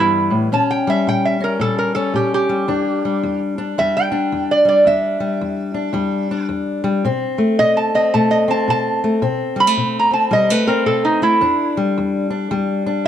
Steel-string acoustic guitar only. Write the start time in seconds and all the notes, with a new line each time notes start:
Already playing: E3 G3 B3 G4
0.00 G2
0.30 A2
0.52 A#2 C#4
0.87 G3
1.07 A#2
1.40 C#4
1.60 A#2 G3
1.96 C#4
2.14 A#2
2.49 G3
2.68 E2 D4
3.05 G3
3.23 E2
3.58 D4
3.78 E2 G3
4.12 D4
4.32 E2
4.65 G3
4.86 E2 D4
5.20 G3
5.41 E2
5.74 D4
5.93 E2 G3
6.31 D4
6.49 E2
6.84 G3
7.05 B2 C4
7.38 A3
7.59 B2
7.95 C4
8.14 B2 A3
8.48 C4
8.68 B2
9.04 A3
9.22 B2 C4
9.56 G3
9.67 A3
9.77 B2
10.11 C4
10.31 B2 G3
10.50 A3
10.68 C4
10.86 B2
11.22 A3
11.41 E2 D4
11.77 G3
11.98 E2
12.30 D4
12.51 E2 G3
12.86 D4